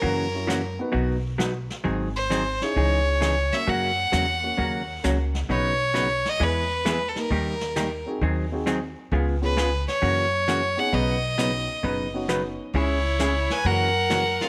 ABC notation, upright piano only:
X:1
M:4/4
L:1/8
Q:"Swing" 1/4=132
K:B
V:1 name="Upright piano"
z [CEFA] z [B,DFB] z4 | z3 [CDEG]3 z [A,CFc] | z3 [A,CFA] z2 [A,CFc] z | z6 z [A,D=GA] |
z3 [=CDFG] z [^B,DFG] z2 | z [B,C^EG] z4 z [B,CDG] | z2 [B,CDF] z2 [B,CDF]3 | z6 z [G,C^EG] |]